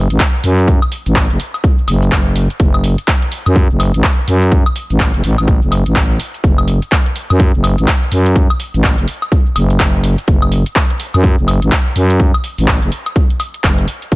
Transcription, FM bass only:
0.10 0.18 A1 loud
0.44 0.80 F#2 medium
1.06 1.28 A1 loud
1.30 1.38 F#1 loud
1.88 2.10 F#1 loud
2.12 2.48 F#1 loud
2.60 2.96 F#1 loud
3.46 3.68 F#2 loud
3.70 3.92 F#1 loud
3.94 4.02 A1 loud
4.28 4.64 F#2 medium
4.90 5.12 A1 loud
5.14 5.22 F#1 loud
5.24 5.36 A1 loud
5.38 5.60 A1 loud
5.62 5.84 F#1 loud
5.86 6.18 A1 loud
6.44 6.80 F#1 loud
7.30 7.52 F#2 loud
7.54 7.76 F#1 loud
7.78 7.86 A1 loud
8.12 8.48 F#2 medium
8.74 8.96 A1 loud
8.98 9.06 F#1 medium
9.56 9.78 F#1 loud
9.80 10.16 F#1 loud
10.28 10.64 F#1 loud
11.14 11.36 F#2 loud
11.38 11.60 F#1 medium
11.62 11.70 A1 loud
11.96 12.32 F#2 medium
12.58 12.80 A1 loud
12.82 12.90 F#1 loud
13.64 13.86 F#1 loud
14.12 14.16 F#1 medium

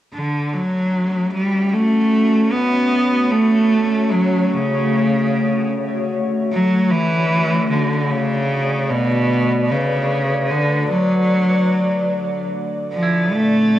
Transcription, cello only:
0.14 0.55 D3 medium
0.53 1.32 F#3 medium
1.33 1.75 G3 medium
1.73 2.54 A3 medium
2.52 3.32 B3 medium
3.31 4.13 A3 medium
4.11 4.55 F#3 medium
4.54 6.13 C#3 medium
6.52 6.93 F#3 medium
6.91 7.69 E3 loud
7.70 8.12 D3 medium
8.11 8.91 C#3 medium
8.90 9.72 B2 medium
9.71 10.52 C#3 medium
10.50 10.89 D3 medium
10.89 12.47 F#3 medium
12.92 13.34 F3 medium
13.33 13.79 A3 medium

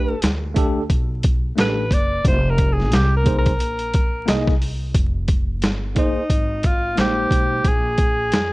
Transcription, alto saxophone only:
0.00 0.31 B4 loud
1.61 1.95 B4 loud
1.94 2.26 D5 loud
2.28 2.52 C5 loud
2.50 2.74 A#4 loud
2.73 2.97 G#4 medium
2.95 3.16 G4 loud
3.17 3.37 A#4 medium
3.38 4.35 A#4 medium
5.99 6.67 D#4 medium
6.66 6.98 F4 medium
7.00 7.69 G4 medium
7.68 8.53 G#4 loud

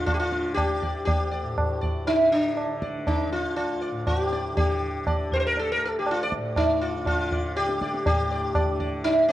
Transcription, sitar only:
0.06 0.13 F4 medium
0.14 0.19 G4 medium
0.19 0.54 F4 medium
0.54 1.04 G4 medium
0.82 1.05 D5 soft
1.05 1.77 G4 medium
1.31 1.55 D5 soft
1.81 2.05 D5 soft
2.07 2.32 D#4 medium
2.32 2.79 D4 medium
2.83 3.06 D5 soft
3.08 3.32 D#4 medium
3.32 3.55 F4 medium
3.56 4.07 F4 medium
3.81 4.05 D5 soft
4.07 4.22 F#4 medium
4.22 4.56 G4 medium
4.32 4.56 D5 soft
4.57 5.34 G4 medium
5.07 5.30 D5 soft
5.34 5.39 A#4 medium
5.34 5.36 C5 medium
5.40 5.42 C5 medium
5.40 5.45 C5 medium
5.47 5.58 A#4 medium
5.59 5.71 A4 medium
5.72 5.82 A#4 medium
5.85 5.97 A4 medium
5.99 6.09 G4 medium
6.11 6.22 F4 medium
6.23 6.33 D5 medium
6.57 6.83 D#4 medium
6.57 6.80 D5 soft
6.82 7.06 F4 medium
6.82 7.05 D5 soft
7.07 7.53 F4 medium
7.32 7.55 D5 soft
7.56 8.05 G4 medium
7.56 7.79 D5 soft
7.81 8.04 D5 soft
8.06 8.77 G4 medium
8.31 8.54 D5 soft
8.55 8.79 D5 soft
8.80 9.03 D5 soft
9.04 9.28 D#4 medium
9.28 9.32 D4 medium

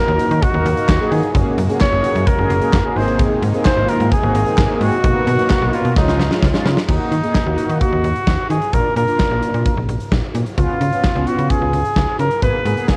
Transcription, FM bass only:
0.08 0.18 D#2 loud
0.31 0.41 D#3 loud
0.54 0.64 D#2 loud
0.66 0.76 D#2 loud
0.89 0.99 D#2 loud
1.12 1.22 D#3 loud
1.35 1.45 F#1 loud
1.58 1.68 F#2 loud
1.92 2.03 F#1 loud
2.15 2.26 F#2 loud
2.39 2.49 F#1 loud
2.50 2.60 F#1 loud
2.73 2.83 F#1 loud
2.96 3.27 G#1 medium
3.42 3.53 G#2 loud
3.77 3.87 G#1 loud
4.00 4.10 G#2 loud
4.23 4.33 G#1 loud
4.35 4.45 G#1 loud
4.58 4.68 G#1 loud
4.81 4.91 G#2 loud
5.04 5.14 B1 loud
5.27 5.37 B2 loud
5.62 5.72 B1 loud
5.85 5.95 B2 medium
5.96 6.07 C#2 loud
6.08 6.18 C#2 loud
6.19 6.30 C#2 loud
6.42 6.53 C#2 loud
6.66 6.76 C#3 loud
6.89 6.99 D#2 loud
7.12 7.22 D#3 loud
7.46 7.57 D#2 loud
7.69 7.80 D#3 loud
7.92 8.03 D#2 loud
8.04 8.14 D#2 loud
8.27 8.37 D#2 loud
8.50 8.60 D#3 medium
8.73 8.83 A#1 loud
8.96 9.06 A#2 loud
9.31 9.41 A#1 medium
9.54 9.64 A#2 loud
9.77 9.87 A#1 loud
9.89 9.99 A#1 loud
10.12 10.22 A#1 loud
10.35 10.45 A#2 loud
10.58 10.68 C#2 loud
10.81 10.91 C#3 medium
11.15 11.26 C#2 loud
11.39 11.49 C#3 loud
11.62 11.72 C#2 medium
11.73 11.83 C#2 medium
11.96 12.07 C#2 loud
12.19 12.30 C#3 loud
12.42 12.53 G#1 loud
12.65 12.76 G#2 loud

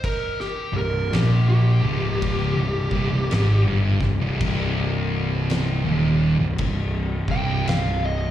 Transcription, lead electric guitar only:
0.04 0.39 A#4 medium
0.41 0.76 G4 medium
0.77 1.12 A#4 medium
1.14 1.48 G4 medium
1.49 3.64 G4 loud
7.31 7.67 G5 loud
7.69 8.04 F5 loud
8.05 8.31 D#5 loud

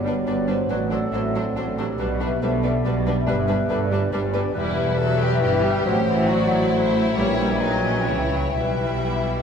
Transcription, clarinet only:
0.00 0.27 D5 soft
0.27 0.50 D5 medium
0.49 0.69 C5 medium
0.70 0.93 B4 medium
0.92 1.57 A4 medium
1.57 1.99 A4 soft
1.99 2.42 B4 medium
2.42 2.52 C5 soft
2.63 3.27 D5 medium
3.27 3.48 B4 medium
3.48 4.14 B4 medium
4.12 4.54 D5 medium
4.54 5.81 B4 medium
5.86 7.15 C5 medium
7.17 8.38 C#5 medium
8.55 9.42 B4 medium

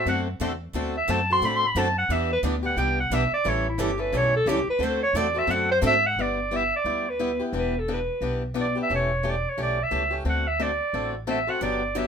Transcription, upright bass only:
0.06 0.39 F#2 medium
0.40 0.73 E2 medium
0.74 1.07 D2 medium
1.09 1.41 F#2 medium
1.41 1.74 A2 medium
1.75 2.08 F#2 medium
2.09 2.42 E2 medium
2.43 2.76 D2 medium
2.76 3.10 C2 medium
3.10 3.30 B1 medium
3.45 3.77 A1 medium
3.78 4.12 G1 medium
4.12 4.45 B1 medium
4.46 4.65 C#2 medium
4.67 muted upright bass stroke soft
4.79 5.13 D2 medium
5.13 5.47 E2 medium
5.47 5.81 F#2 medium
5.82 6.15 G#2 medium
6.16 6.71 G1 medium
6.84 7.39 D2 medium
7.53 8.07 E1 medium
8.21 8.75 B1 medium
8.90 9.44 E1 medium
9.58 9.86 B1 medium
9.91 10.20 C#2 medium
10.25 10.79 D2 medium
10.93 11.47 A1 medium
11.61 12.07 G1 medium

